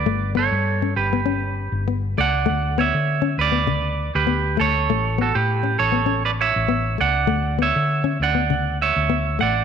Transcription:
<<
  \new Staff \with { instrumentName = "Clean electric guitar" } { \time 4/4 \key d \major \tempo 4 = 100 <b' d''>8 <a' cis''>4 <g' b'>4. r8 <d'' fis''>8~ | <d'' fis''>8 <cis'' e''>4 <b' d''>4~ <b' d''>16 <g' b'>8. <a' cis''>8~ | <a' cis''>8 <fis' a'>16 <g' b'>8. <a' cis''>8. <b' d''>16 <cis'' e''>4 <d'' fis''>8~ | <d'' fis''>8 <cis'' e''>4 <d'' fis''>4 <cis'' e''>4 <d'' fis''>8 | }
  \new Staff \with { instrumentName = "Nylon-string guitar" } { \time 4/4 \key d \major a8 b8 r16 cis'8 b16 cis'8 r8 b8 a8 | a8 b8 r16 cis'8 b16 cis8 r8 b8 a8 | a8 b8 r16 cis'8 b16 cis'8 r8 b8 a8 | a8 b8 r16 cis'8 b16 cis8 r8 b8 a8 | }
  \new Staff \with { instrumentName = "Fingered electric bass" } { \clef bass \time 4/4 \key d \major g,,8. g,8. g,,4~ g,,16 g,,8. cis,8 | d,8. d8. d,4~ d,16 d,8. d,8 | a,,8. a,8. a,,4~ a,,16 a,,8. cis,8 | d,8. d8. d,4~ d,16 d,8. a,,8 | }
>>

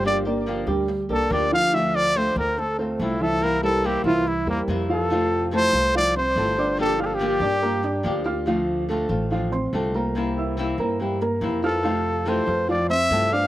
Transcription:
<<
  \new Staff \with { instrumentName = "Grand piano" } { \time 4/4 \key f \major \tempo 4 = 142 <g g' g''>8 <bes bes' d''>4 <g g' g''>4 <bes bes' d''>4 <f f' f''>8 | <f f' f''>4 <a a' c''>4 <a a' c''>8 <a a' c''>4 <e e''>8~ | <e e''>8 <g g' bes'>4 <e e' e''>4 <g g' bes'>4 <f f' f''>8 | <f' f''>4 <a a' a''>4 <f f' f''>8 <c' c'' c'''>8 <a a' a''>8 <d' d'' d'''>8~ |
<d' d'' d'''>8 <f' f'' f'''>4 <d' d'' d'''>8 <bes bes' bes''>8 <d' d'' d'''>4 <f' f'' f'''>8 | <f f' f''>4 <a a' a''>4 <f f' f''>8 <c' c'' c'''>8 <a a' a''>8 <bes bes' bes''>8~ | <bes bes' bes''>8 <e' e'' e'''>4 <bes bes' bes''>8 <g g' g''>8 <bes bes' bes''>4 <f' f'' f'''>8 | <f' f''>4 <a a' a''>4 <f f' f''>8 <c' c'' c'''>8 <a a' a''>8 <d' d'' d'''>8 | }
  \new Staff \with { instrumentName = "Trumpet" } { \time 4/4 \key f \major d''8 r2 a'8 d''8 f''8 | e''8 d''8 c''8 bes'8 a'8 c'8 e'8 a'8 | bes'8 a'8 g'8 f'8 e'8 bes8 r8 a'8~ | a'4 c''4 d''8 c''4. |
\tuplet 3/2 { a'8. g'16 a'16 g'16~ } g'2~ g'8 r8 | r1 | r2. r8 a'8~ | a'4 c''4 d''8 e''4 f''8 | }
  \new Staff \with { instrumentName = "Nylon-string guitar" } { \time 4/4 \key f \major <d f bes d' g'>8 <bes d' g'>8 <d f bes d' g'>8 <bes d' g'>8 r8 <bes d' g'>8 <d f bes d' g'>4 | <d a c' f'>8 <a c' f'>8 <d a c' f'>8 <a c' f'>8 r8 <a c' f'>8 <d a c' f'>4 | <c e bes c' e'>8 <bes c' e'>8 <c e bes c' e'>8 <bes c' e'>8 r8 <bes c' e'>8 <c e bes c' e'>4 | <c a c' f'>4 <c e a c' f'>8 <a c' f'>8 <e a c' f'>8 r8 <c e a c' f'>8 <a c' f'>8 |
<d f bes d' g'>4 <d f bes d' g'>8 <bes d' g'>8 <f bes d' g'>8 r8 <d f bes d' g'>8 <bes d' g'>8 | <d a c' f'>4 <d a c' f'>8 <a c' f'>8 <d a c' f'>8 r8 <d a c' f'>8 <a c' f'>8 | <c e bes c' e'>4 <c e bes c' e'>8 <bes c' e'>8 <e bes c' e'>8 r8 <c e bes c' e'>8 <bes c' e'>8 | <c a c' f'>4 <c e a c' f'>8 <a c' f'>8 <e a c' f'>8 r8 <c e a c' f'>8 <a c' f'>8 | }
  \new Staff \with { instrumentName = "Upright bass" } { \clef bass \time 4/4 \key f \major g,,4. d,4 c,8 d,4~ | d,4. d,4. c,4~ | c,4. c,4 e,8 f,4~ | f,4. c,4. g,,4~ |
g,,4. g,4. d,4~ | d,4. a,,4. c,4~ | c,4. g,4. f,4~ | f,4. f,4. g,4 | }
>>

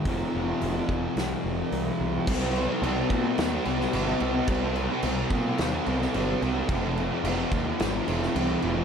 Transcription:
<<
  \new Staff \with { instrumentName = "Distorted electric guitar" } { \clef bass \time 4/4 \key f \dorian \tempo 4 = 109 <f, c f>1 | <c g c'>16 <g c'>8 <g c'>16 <c g c'>8 <c g c'>16 <g c'>8 <g c'>16 <c g c'>16 <g c'>16 <c g c'>8 <c g c'>16 <g c'>16 | <c g c'>16 <g c'>8 <g c'>16 <c g c'>8 <c g c'>16 <g c'>8 <g c'>16 <c g c'>16 <g c'>16 <c g c'>8 <c g c'>16 <g c'>16 | <f, c f>16 <c f>8 <c f>16 <f, c f>8 <f, c f>16 <c f>8 <c f>16 <f, c f>16 <c f>16 <f, c f>8 <f, c f>16 <c f>16 | }
  \new Staff \with { instrumentName = "Picked electric bass" } { \clef bass \time 4/4 \key f \dorian f,,8 f,,8 f,,8 f,,8 c,8 f,,8 c,8 c,8 | c,4 c,8 bes,8 ees,8 c,8 g,,8 c,8 | c,4 c,8 bes,8 ees,8 c,8 g,,8 c,8 | f,,4 f,,8 ees,8 aes,,8 f,,8 c,8 f,,8 | }
  \new DrumStaff \with { instrumentName = "Drums" } \drummode { \time 4/4 <hho bd>4 hho8 bd8 <hho sn>4 hho4 | <cymc bd>8 cymc8 cymc8 <cymc bd>8 <cymc sn>8 cymc16 sn16 cymc8 cymc8 | <cymc bd>8 cymc8 cymc8 <cymc bd>8 <cymc sn>8 cymc16 sn16 cymc8 cymc8 | <cymc bd>8 cymc8 cymc8 <cymc bd>8 <cymc sn>8 cymc16 sn16 cymc8 cymc8 | }
>>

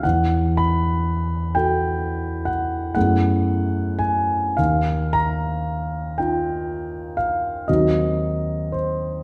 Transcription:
\new Staff \with { instrumentName = "Grand piano" } { \time 9/8 \key ees \mixolydian \tempo 4. = 39 << { fis''8 b''4 g''4 fis''8 ges''4 aes''8 | f''8 bes''4 g''4 f''8 ees''4 c''8 | } \\ { e,4. <fis' a'>4. <ges, a ces' fes' aes'>4. | ees,4. <ees' f'>4. <ees, ges c' ees' ges'>4. | } >> }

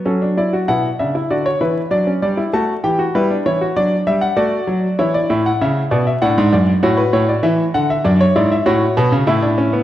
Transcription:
<<
  \new Staff \with { instrumentName = "Grand piano" } { \time 4/4 \key d \major \tempo 4 = 98 << { a'8 d''8 fis''8 e''8 d''16 cis''16 b'8 d''8 d''8 | a''8 g''8 b'8 cis''8 d''8 e''16 fis''16 d''4 | cis''16 d''16 e''16 fis''16 e''8 d''16 e''16 fis''8 d''8 cis''16 b'16 cis''16 d''16 | e''8 fis''16 e''16 d''16 cis''16 d''16 e''16 cis''4 e''4 | } \\ { cis'16 d'16 e'16 fis'16 e'8 d'16 e'16 fis'8 e'8 d'16 cis'16 d'16 e'16 | fis'8 g'16 fis'16 e'16 d'16 e'16 fis'16 d'4 fis'4 | e'2 d'4 fis'4~ | fis'4 d'8 e'8 fis'4 e'16 d'16 cis'16 b16 | } >> }
  \new Staff \with { instrumentName = "Grand piano" } { \clef bass \time 4/4 \key d \major fis4 b,8 cis8 d8 e8 fis8 g8 | a8 e8 g8 e8 fis8 g8 a8 fis8 | e8 a,8 cis8 b,8 a,16 gis,16 fis,8 a,8 a,8 | e8 d8 fis,8 gis,8 a,8 b,16 cis16 a,4 | }
>>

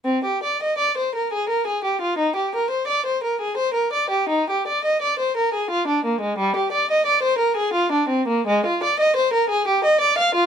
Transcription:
\new Staff \with { instrumentName = "Violin" } { \time 3/4 \key c \minor \tempo 4 = 87 c'16 g'16 d''16 ees''16 d''16 c''16 bes'16 aes'16 bes'16 aes'16 g'16 f'16 | ees'16 g'16 bes'16 c''16 d''16 c''16 bes'16 aes'16 c''16 bes'16 d''16 g'16 | ees'16 g'16 d''16 ees''16 d''16 c''16 bes'16 aes'16 f'16 d'16 bes16 aes16 | g16 g'16 d''16 ees''16 d''16 c''16 bes'16 aes'16 f'16 d'16 c'16 bes16 |
\key f \dorian aes16 f'16 d''16 ees''16 c''16 bes'16 aes'16 g'16 ees''16 d''16 f''16 f'16 | }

